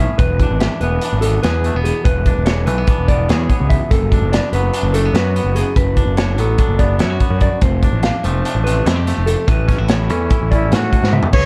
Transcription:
Already playing: clean electric guitar E3 C#4 E4 G#4 E5
0.00 clean electric guitar A2
0.18 picked electric bass E1, clean electric guitar E2 B4, kick, closed hi-hat
0.40 clean electric guitar D4, kick, closed hi-hat
0.50 picked electric bass G#1
0.60 clean electric guitar E5, snare, closed hi-hat
0.81 picked electric bass E1, clean electric guitar E3 B3 B4, closed hi-hat
1.01 clean electric guitar D4, closed hi-hat
1.13 picked electric bass G#1
1.21 clean electric guitar B2 B3 A4, closed hi-hat
1.43 picked electric bass E2, clean electric guitar G#4 B4, snare, closed hi-hat
1.64 clean electric guitar A3, closed hi-hat
1.75 picked electric bass E1, clean electric guitar B3
1.84 clean electric guitar E2 G#4, closed hi-hat
2.05 picked electric bass E1, clean electric guitar E2 B4, kick, closed hi-hat
2.26 clean electric guitar D4, kick, closed hi-hat
2.37 picked electric bass E1
2.45 clean electric guitar C#5, snare, closed hi-hat
2.66 picked electric bass B1, clean electric guitar E3 A3 B4, closed hi-hat
2.78 clean electric guitar B3
2.87 clean electric guitar D4, kick, closed hi-hat
2.98 picked electric bass E1
3.08 clean electric guitar B2 B3 D5, kick, closed hi-hat
3.29 picked electric bass E2, clean electric guitar G#4 C#5, snare, closed hi-hat
3.50 clean electric guitar B3, kick, closed hi-hat
3.60 picked electric bass C#2
3.70 clean electric guitar E2 E5, kick, closed hi-hat
3.91 picked electric bass F#1, clean electric guitar F#2 A4, kick, closed hi-hat
4.12 clean electric guitar D4, kick, closed hi-hat
4.22 picked electric bass F#1
4.32 clean electric guitar D5, snare, closed hi-hat
4.53 picked electric bass F#1, clean electric guitar F#3 B3 B4, closed hi-hat
4.73 clean electric guitar D4, closed hi-hat
4.83 picked electric bass F#1
4.94 clean electric guitar F#2 A3 A4, closed hi-hat
5.05 clean electric guitar B3
5.13 picked electric bass F#2, clean electric guitar F#4 B4, snare, closed hi-hat
5.36 clean electric guitar B3, closed hi-hat
5.44 picked electric bass F#1
5.55 clean electric guitar F#2 G#4, closed hi-hat
5.76 picked electric bass F#1, clean electric guitar F#2 B4, kick, closed hi-hat
5.97 clean electric guitar D4, kick, closed hi-hat
6.07 picked electric bass F#1
6.17 clean electric guitar C#5, snare, closed hi-hat
6.38 picked electric bass A1, clean electric guitar F#3 B3 A4, closed hi-hat
6.58 clean electric guitar D4, kick, closed hi-hat
6.68 picked electric bass F#1
6.79 clean electric guitar F#2 B3 D5, kick, closed hi-hat
6.99 picked electric bass F#2, clean electric guitar E4 C#5, snare, closed hi-hat
7.10 clean electric guitar F#4
7.20 clean electric guitar B3, kick, closed hi-hat
7.30 picked electric bass F#2
7.41 clean electric guitar F#2 D5, kick, closed hi-hat
7.61 picked electric bass F1, clean electric guitar F2 C5, kick, closed hi-hat
7.83 clean electric guitar D4, kick, closed hi-hat
7.93 picked electric bass A1
8.03 clean electric guitar F5, snare, closed hi-hat
8.24 picked electric bass F1, clean electric guitar F3 A3 C5, closed hi-hat
8.45 clean electric guitar D4, closed hi-hat
8.55 picked electric bass A1
8.64 clean electric guitar C3 A3 B4, closed hi-hat
8.86 picked electric bass F2, clean electric guitar E4 C5, snare, closed hi-hat
8.96 clean electric guitar G4
9.07 clean electric guitar A3, snare, closed hi-hat
9.18 picked electric bass F1
9.26 clean electric guitar F2 A4, closed hi-hat
9.47 picked electric bass A1, clean electric guitar A2 B4, kick, closed hi-hat
9.68 clean electric guitar C#4, kick, snare, closed hi-hat
9.78 picked electric bass A1, clean electric guitar E4
9.88 clean electric guitar C#5, snare, closed hi-hat
10.10 picked electric bass E2, clean electric guitar E3 C#4 A4, closed hi-hat
10.30 clean electric guitar E4, kick, closed hi-hat
10.41 picked electric bass A1
10.51 clean electric guitar E2 C#4 D5, trumpet E4, kick, closed hi-hat
10.71 clean electric guitar G#2 C#5, picked electric bass A2, trumpet F#4, snare, closed hi-hat
10.93 clean electric guitar A2, kick, closed hi-hat
11.03 picked electric bass G#2, snare
11.13 clean electric guitar B2 E5, mid tom
11.23 floor tom
11.33 picked electric bass C#2, clean electric guitar C#3 G#4 B4, trumpet C#5, kick, crash

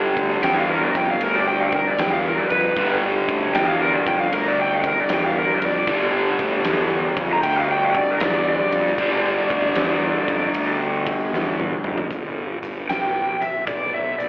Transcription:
Already playing: overdriven electric guitar G2 D3 G3
0.17 fingered electric bass D2, kick, ride
0.31 snare
0.43 fingered electric bass E2, electric slide guitar G5, snare, ride
0.59 electric slide guitar F5
0.71 electric slide guitar A#4
0.83 electric slide guitar D5
0.95 fingered electric bass F2, electric slide guitar G5, kick, ride
1.11 electric slide guitar F5
1.21 fingered electric bass D2, electric slide guitar A#4, ride
1.35 electric slide guitar D5
1.48 electric slide guitar G5
1.60 electric slide guitar F5
1.72 electric slide guitar A#4, kick, ride
1.87 electric slide guitar D5
1.98 fingered electric bass E2, electric slide guitar G5, snare, ride
2.12 electric slide guitar F5
2.28 electric slide guitar A#4
2.38 electric slide guitar D5
2.50 fingered electric bass F2, electric slide guitar B4, ride
2.77 fingered electric bass G1, overdriven electric guitar G2 D3 G3, kick, ride
3.29 fingered electric bass D2, kick, ride
3.54 fingered electric bass E2, electric slide guitar G5, snare, ride
3.67 electric slide guitar F5
3.81 electric slide guitar A#4
3.93 electric slide guitar D5
4.07 fingered electric bass F2, electric slide guitar G5, kick, ride
4.20 electric slide guitar F5
4.33 fingered electric bass D2, electric slide guitar A#4, ride
4.48 electric slide guitar D5
4.61 electric slide guitar G5
4.74 electric slide guitar F5
4.84 electric slide guitar A#4, kick, ride
5.00 electric slide guitar D5
5.09 fingered electric bass E2, snare, ride
5.14 electric slide guitar G5
5.26 electric slide guitar F5
5.38 electric slide guitar A#4
5.54 electric slide guitar D5
5.62 fingered electric bass F2, electric slide guitar D5, ride
5.87 fingered electric bass G1, overdriven electric guitar G2 D3 G3, kick, ride
6.39 fingered electric bass D2, kick, ride
6.64 fingered electric bass E2, snare, ride
7.17 fingered electric bass F2, kick, ride
7.33 electric slide guitar A#5
7.43 fingered electric bass D2, electric slide guitar G5, ride
7.59 electric slide guitar F5
7.71 electric slide guitar G5
7.84 electric slide guitar F5
7.95 electric slide guitar D5, kick, ride
8.11 electric slide guitar A#4
8.20 fingered electric bass E2, electric slide guitar D5, snare, ride
8.49 electric slide guitar D5
8.72 fingered electric bass F2, ride
8.86 snare
8.98 fingered electric bass G1, overdriven electric guitar G2 D3 G3, kick, ride
9.50 fingered electric bass D2, kick, ride
9.65 snare
9.75 fingered electric bass E2, snare, ride
10.28 fingered electric bass F2, kick, ride
10.54 fingered electric bass D2, ride
11.07 kick, ride
11.32 fingered electric bass E2, snare
11.60 high tom
11.84 fingered electric bass F2, mid tom
11.98 floor tom
12.11 fingered electric bass G1, kick, closed hi-hat
12.62 fingered electric bass G1, closed hi-hat
12.89 fingered electric bass B1, electric slide guitar G5, snare, closed hi-hat
13.41 fingered electric bass B1, electric slide guitar E5, closed hi-hat
13.67 fingered electric bass B1, electric slide guitar D5, kick, closed hi-hat
13.94 electric slide guitar E5
14.18 fingered electric bass B1, electric slide guitar D5, closed hi-hat

